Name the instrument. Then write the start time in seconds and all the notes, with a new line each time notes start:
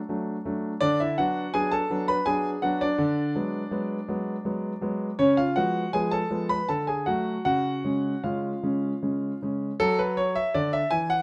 grand piano
Already playing: A4
0.09 F#3 A3 D4
0.45 F#3 A3 D4
0.81 D3 D4 D5
1.00 E4 E5
1.18 F#3 B3 D4 F#4 F#5
1.54 F#3 B3 D4 G#4 G#5
1.71 A4 A5
1.90 F#3 B3 D4
2.08 B4 B5
2.26 F#3 B3 D4 G#4 G#5
2.62 F#3 B3 D4 F#4 F#5
2.81 D4 D5
2.98 D3
3.35 F#3 G#3 B3
3.71 F#3 G#3 B3
4.08 F#3 G#3 B3
4.45 F#3 G#3 B3
4.81 F#3 G#3 B3
5.19 C#3 C#4 C#5
5.37 F4 F5
5.56 F3 G#3 B3 F#4 F#5
5.93 F3 G#3 B3 G#4 G#5
6.11 A4 A5
6.30 F3 G#3 B3
6.49 B4 B5
6.69 D3 A4 A5
6.87 G#4 G#5
7.06 F#3 A3 F#4 F#5
7.45 C#3 F#4 F#5
7.84 C#3 G#3 C#4
8.24 C#3 G#3 C#4 F4 F5
8.63 C#3 G#3 C#4
9.02 C#3 G#3 C#4
9.42 C#3 G#3 C#4
9.80 F#3 A4
9.99 B4
10.17 C#5
10.36 E5
10.54 D3 D5
10.73 E5
10.91 E3 G#5
11.10 F#5